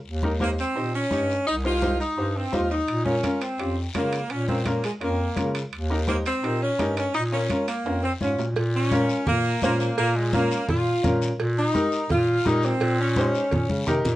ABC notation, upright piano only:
X:1
M:4/4
L:1/8
Q:1/4=169
K:Bbdor
V:1 name="Upright piano"
z [EGB] [EGc] z [EGc] z [EGd] z | z [EGc] [EGc] z [EGc] z [EGc] z | z [DFB] [DFB] z [DFG] z [DFB] z | z [DFB] [DFB] z [DFB] z [DFB] z |
z [EGB] [EGc] z [EGB] z [EGB] z | z [DFB] [DFB] z [DFB] z [DFd] z | z2 [DFB] z3 [DFc] z | z2 [DFB] z3 [DFB] z |
z2 [EGB] z3 [EGB] z | z2 [EGc] z3 [EGB] z |]